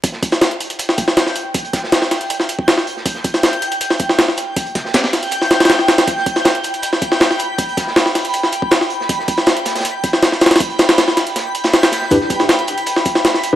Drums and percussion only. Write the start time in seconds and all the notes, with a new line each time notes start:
0.04 kick, closed hi-hat
0.12 snare
0.23 kick, closed hi-hat
0.32 snare, closed hi-hat
0.41 snare, closed hi-hat
0.51 closed hi-hat
0.60 closed hi-hat
0.70 closed hi-hat
0.79 closed hi-hat
0.89 snare
0.98 kick, closed hi-hat
1.08 snare
1.17 snare, closed hi-hat
1.26 snare
1.36 closed hi-hat
1.54 kick, closed hi-hat
1.65 closed hi-hat
1.73 kick, snare, closed hi-hat
1.84 snare
1.92 snare, closed hi-hat
2.02 snare
2.11 snare, closed hi-hat, open hi-hat
2.21 closed hi-hat
2.30 closed hi-hat
2.40 snare, closed hi-hat
2.49 closed hi-hat
2.59 kick
2.68 snare, closed hi-hat
2.78 snare
2.87 closed hi-hat
2.97 snare
3.06 kick, closed hi-hat
3.15 snare
3.24 kick, closed hi-hat
3.34 snare, closed hi-hat
3.43 snare, closed hi-hat
3.53 closed hi-hat
3.62 closed hi-hat
3.72 closed hi-hat
3.81 closed hi-hat
3.90 snare
4.00 kick, closed hi-hat
4.09 snare
4.19 snare, closed hi-hat
4.28 snare
4.37 closed hi-hat
4.56 kick, closed hi-hat
4.66 closed hi-hat
4.75 kick, snare, closed hi-hat
4.85 snare
4.94 snare, closed hi-hat
5.03 snare
5.13 snare, closed hi-hat, open hi-hat
5.23 closed hi-hat
5.31 closed hi-hat
5.42 snare, closed hi-hat
5.51 snare, closed hi-hat
5.60 snare, closed hi-hat
5.65 snare, closed hi-hat
5.69 snare, closed hi-hat
5.79 snare
5.88 snare, closed hi-hat
5.98 snare, closed hi-hat
6.07 kick, closed hi-hat
6.17 snare
6.26 kick, closed hi-hat
6.36 snare, closed hi-hat
6.45 snare, closed hi-hat
6.55 closed hi-hat
6.64 closed hi-hat
6.74 closed hi-hat
6.83 closed hi-hat
6.93 snare
7.01 kick, closed hi-hat
7.12 snare
7.20 snare, closed hi-hat
7.31 snare
7.39 closed hi-hat
7.58 kick, closed hi-hat
7.69 closed hi-hat
7.77 kick, snare, closed hi-hat
7.87 snare
7.96 snare, closed hi-hat
8.05 snare
8.15 snare, closed hi-hat, open hi-hat
8.25 closed hi-hat
8.34 closed hi-hat
8.43 snare, closed hi-hat
8.52 closed hi-hat
8.62 kick
8.71 snare, closed hi-hat
8.81 snare
8.90 closed hi-hat
9.01 snare
9.09 kick, closed hi-hat
9.19 snare
9.28 kick, closed hi-hat
9.37 snare, closed hi-hat
9.46 snare, closed hi-hat
9.57 closed hi-hat
9.65 snare, closed hi-hat
9.75 snare, closed hi-hat
9.80 snare, closed hi-hat
9.85 closed hi-hat
10.04 kick, closed hi-hat
10.13 snare
10.23 snare, closed hi-hat
10.32 snare
10.41 snare, closed hi-hat
10.46 snare, closed hi-hat
10.51 snare, closed hi-hat
10.56 snare, closed hi-hat
10.60 kick, closed hi-hat
10.70 closed hi-hat
10.79 snare, closed hi-hat
10.89 snare, closed hi-hat
10.98 snare, closed hi-hat
11.08 snare
11.17 snare, closed hi-hat, open hi-hat
11.27 closed hi-hat
11.36 snare, closed hi-hat
11.55 closed hi-hat
11.64 snare, closed hi-hat
11.73 snare, closed hi-hat
11.83 snare, closed hi-hat
11.92 snare, closed hi-hat
12.02 snare
12.11 kick, closed hi-hat
12.20 snare
12.30 kick, closed hi-hat
12.39 snare, closed hi-hat
12.49 snare, closed hi-hat
12.59 closed hi-hat
12.67 closed hi-hat
12.78 closed hi-hat
12.86 closed hi-hat
12.96 snare
13.05 kick, closed hi-hat
13.15 snare
13.25 snare, closed hi-hat
13.34 snare
13.43 closed hi-hat